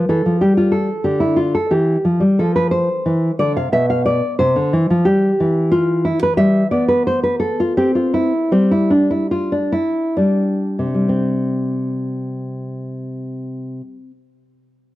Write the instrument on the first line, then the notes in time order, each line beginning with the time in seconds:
nylon-string guitar
0.09 E3 A4
0.26 F3
0.41 G3 G4
0.57 F4
0.72 A4
1.04 D3 G4
1.20 E4
1.36 F4
1.55 A4
1.71 E3 G4
2.05 F3
2.20 G3
2.39 F3 A4
2.56 B4
2.71 C5
3.06 E3
3.39 D3 D5
3.56 C3 F5
3.72 B2 E5
3.90 F5
4.06 D5
4.39 C3 C5
4.56 D3
4.73 E3
4.90 F3
5.05 G3 G4
5.40 E3
5.71 F4
6.05 E4
6.23 B4
6.37 G3 E5
6.71 B3 D5
6.88 B4
7.07 C5
7.23 B4
7.40 A4
7.60 F4
7.77 C4 G4
7.95 F4
8.14 E4
8.52 G3 C4
8.71 E4
8.90 D4
9.11 E4
9.31 F4
9.52 D4
9.72 E4
10.17 G3 D4
10.79 C3
10.94 G3
11.09 C4